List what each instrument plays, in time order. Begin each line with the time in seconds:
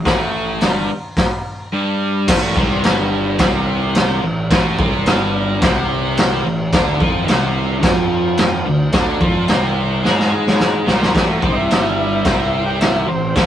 0.05 picked electric bass A1, overdriven electric guitar A2 A3, kick, snare, open hi-hat
0.61 picked electric bass G1, overdriven electric guitar G2 G3, snare, open hi-hat
1.17 kick, snare, open hi-hat
1.73 overdriven electric guitar G2 G3
2.28 picked electric bass A1, overdriven electric guitar A2 A3, kick, snare, crash
2.56 picked electric bass C2, overdriven electric guitar C3 C4, kick
2.84 picked electric bass G1, overdriven electric guitar G2 G3, snare, crash
3.39 picked electric bass C2, overdriven electric guitar C3 C4, kick, snare, crash
3.95 snare, crash
4.23 picked electric bass A1, overdriven electric guitar A2
4.51 picked electric bass A1, overdriven electric guitar A2 A3, kick, snare, crash
4.79 picked electric bass C2, overdriven electric guitar C3 C4, kick
5.06 picked electric bass G1, overdriven electric guitar G2 G3, snare, crash
5.62 picked electric bass C2, overdriven electric guitar C3 C4, kick, snare, crash
6.17 snare, crash
6.44 picked electric bass A1, overdriven electric guitar A2
6.73 picked electric bass D2, overdriven electric guitar D3 D4, kick, snare, crash
7.00 picked electric bass F2, overdriven electric guitar F3 F4, kick
7.28 picked electric bass C2, overdriven electric guitar C3 C4, snare, crash
7.83 picked electric bass F2, overdriven electric guitar F3 F4, kick, snare, crash
8.37 snare, crash
8.66 picked electric bass D2, overdriven electric guitar D3
8.92 picked electric bass D2, overdriven electric guitar D3 D4, kick, snare, crash
9.21 picked electric bass F2, overdriven electric guitar F3 F4, kick
9.48 picked electric bass C2, overdriven electric guitar C3 C4, snare, crash
10.04 picked electric bass G#2, overdriven electric guitar G#3 G#4, snare
10.19 snare
10.47 snare
10.60 snare
10.86 picked electric bass C2, overdriven electric guitar C3 C4, snare
11.03 snare
11.14 picked electric bass A1, overdriven electric guitar A2 A3, transistor combo organ G3, kick, snare, crash
11.29 transistor combo organ A3
11.42 picked electric bass C2, overdriven electric guitar C3 C4, transistor combo organ C4, kick
11.52 transistor combo organ D#4
11.56 transistor combo organ E4
11.69 picked electric bass G1, overdriven electric guitar G2 G3, snare, crash
12.25 picked electric bass C2, overdriven electric guitar C3 C4, kick, snare, crash
12.66 transistor combo organ G4
12.81 transistor combo organ E4, snare, crash
13.08 picked electric bass A1, overdriven electric guitar A2, transistor combo organ C4
13.35 picked electric bass A1, overdriven electric guitar A2 A3, transistor combo organ C#4, kick, snare, crash